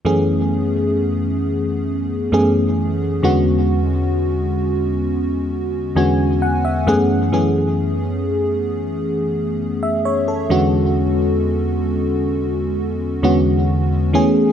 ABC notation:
X:1
M:4/4
L:1/16
Q:1/4=66
K:F#m
V:1 name="FM electric piano"
z16 | z8 z2 g2 f e f2 | z8 z3 e c A2 z | z16 |]
V:2 name="FM electric piano"
[F,,E,A,B,CG]6 z4 [F,,E,A,B,CG]4 [E,,D,G,B,CF]2- | [E,,D,G,B,CF]4 z6 [E,,D,G,B,CF]4 [F,,E,A,B,CG]2 | [F,,E,A,B,CG]6 z8 [E,,D,G,B,CF]2- | [E,,D,G,B,CF]4 z6 [E,,D,G,B,CF]4 [E,A,B,CG]2 |]